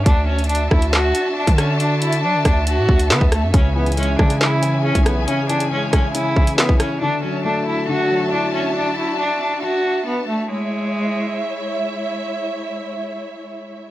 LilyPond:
<<
  \new Staff \with { instrumentName = "String section" } { \time 4/4 \key cis \phrygian \tempo 4 = 138 << { <d' fis' a''>1~ | <d' fis' a''>1 | <cis' gis' gis''>1~ | <cis' gis' gis''>1 |
<d' fis' a''>1~ | <d' fis' a''>1 | <gis e' cis'' e''>1~ | <gis e' cis'' e''>1 | } \\ { e''1~ | e''1~ | e''1~ | e''1 |
e''1~ | e''1 | r1 | r1 | } >> }
  \new Staff \with { instrumentName = "Cello" } { \time 4/4 \key cis \phrygian d'8 cis'8 d'8 e'8 fis'4 d'8 cis'8 | d'8 e'8 d'8 d'8 fis'4 b8 a8 | cis'8 b8 cis'8 d'8 e'4 cis'8 b8 | cis'8 d'8 cis'8 cis'8 e'4 b8 cis'8 |
d'8 cis'8 d'8 e'8 fis'4 d'8 cis'8 | d'8 e'8 d'8 d'8 fis'4 b8 a8 | gis2. r4 | r1 | }
  \new Staff \with { instrumentName = "Grand piano" } { \clef bass \time 4/4 \key cis \phrygian r1 | r1 | cis8 e8 gis4 cis8 e8 e'4 | cis8 e8 gis4 cis8 e8 e'4 |
d8 fis8 a4 d8 fis8 e'4~ | e'4. r2 r8 | r1 | r1 | }
  \new Staff \with { instrumentName = "808-style bass" } { \clef bass \time 4/4 \key cis \phrygian d,4. d,4 r8. d8.~ | d4 fis16 d16 d,8. a,16 d,8 d16 d,8 fis,16 | cis,4. cis4.~ cis16 b,,8. | r1 |
r1 | r1 | r1 | r1 | }
  \new DrumStaff \with { instrumentName = "Drums" } \drummode { \time 4/4 <hh bd>8. hh32 hh32 hh32 hh16. <bd ss>16 hh16 <hc sn>8 hh8 r16 <hh bd>16 <hh ss>8 | hh8 hh16 hh16 r8 <hh bd ss>8 hh8 bd16 hh16 <hc sn>16 bd16 <hh ss>8 | <hh bd>8. hh32 hh32 hh32 hh16. <bd ss>16 hh16 <hc sn>8 hh8 r16 <hh bd>16 <hh ss>8 | hh8 hh16 hh16 r8 <hh bd ss>8 hh8 bd16 hh16 <hc sn>16 bd16 <hh ss>8 |
r4 r4 r4 r4 | r4 r4 r4 r4 | r4 r4 r4 r4 | r4 r4 r4 r4 | }
>>